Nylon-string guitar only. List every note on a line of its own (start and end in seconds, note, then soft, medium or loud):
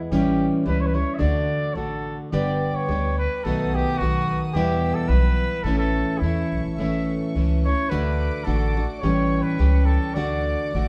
0.00 0.11 E3 medium
0.00 0.12 G#3 medium
0.00 0.12 B3 medium
0.00 0.11 E4 medium
0.12 0.67 A2 medium
0.12 0.65 E3 medium
0.12 0.66 G3 medium
0.12 0.66 C#4 loud
0.12 0.66 E4 medium
0.66 0.96 E3 medium
0.66 0.95 G3 medium
0.66 0.94 C#4 medium
0.66 0.93 E4 medium
0.94 1.19 G3 soft
0.94 1.19 C#4 soft
0.94 1.20 E4 soft
1.19 1.74 D3 medium
1.19 1.76 A3 medium
1.19 1.76 D4 medium
1.19 1.76 F#4 medium
1.76 2.32 D3 medium
1.76 2.33 A3 soft
1.76 2.32 D4 soft
1.76 2.33 F#4 medium
2.33 2.89 G2 medium
2.33 2.89 D3 medium
2.33 2.88 G3 medium
2.33 2.90 B3 medium
2.33 2.89 D4 medium
2.33 2.89 G4 medium
2.90 3.45 G3 medium
2.90 3.46 B3 medium
2.90 3.46 D4 soft
2.90 3.46 G4 medium
3.46 4.01 B2 medium
3.46 4.01 D#3 medium
3.46 4.01 A3 medium
3.46 4.01 B3 medium
3.46 4.01 F#4 medium
4.02 4.56 D#3 medium
4.02 4.56 A3 medium
4.02 4.55 B3 medium
4.02 4.56 F#4 medium
4.55 5.10 E2 medium
4.55 5.10 B2 medium
4.55 5.10 E3 medium
4.55 5.09 G3 medium
4.55 5.11 B3 medium
4.55 5.12 E4 medium
5.11 5.66 E3 medium
5.11 5.66 G3 medium
5.11 5.66 B3 medium
5.11 5.66 E4 medium
5.66 6.22 A2 medium
5.66 6.22 E3 medium
5.66 6.23 A3 medium
5.66 6.22 C#4 loud
5.66 6.22 E4 medium
6.23 6.78 E3 medium
6.23 6.79 A3 medium
6.23 6.79 C#4 medium
6.23 6.79 E4 soft
6.79 7.36 A2 medium
6.79 7.35 E3 medium
6.79 7.36 A3 medium
6.79 7.36 C#4 medium
6.79 7.36 E4 medium
7.36 7.66 E3 medium
7.36 7.66 A3 medium
7.36 7.66 C#4 medium
7.36 7.64 E4 medium
7.65 7.90 A3 soft
7.65 7.91 C#4 soft
7.65 7.91 E4 soft
7.90 8.45 D3 medium
7.90 8.46 A3 medium
7.90 8.45 D4 medium
7.90 8.46 F#4 medium
8.46 8.76 D3 medium
8.46 8.76 A3 medium
8.46 8.76 D4 medium
8.46 8.76 F#4 medium
8.77 9.03 A3 soft
8.77 9.03 D4 soft
8.77 9.02 F#4 soft
9.03 9.59 A2 medium
9.03 9.58 E3 medium
9.03 9.58 G3 medium
9.03 9.59 C#4 medium
9.03 9.59 G4 medium
9.59 10.15 E3 medium
9.59 10.16 G3 medium
9.59 10.16 C#4 medium
9.59 10.16 G4 medium
10.16 10.74 D3 medium
10.16 10.74 A3 medium
10.16 10.75 D4 medium
10.16 10.74 F#4 medium
10.74 10.88 D3 medium
10.74 10.88 A3 medium
10.74 10.88 D4 medium
10.74 10.88 F#4 medium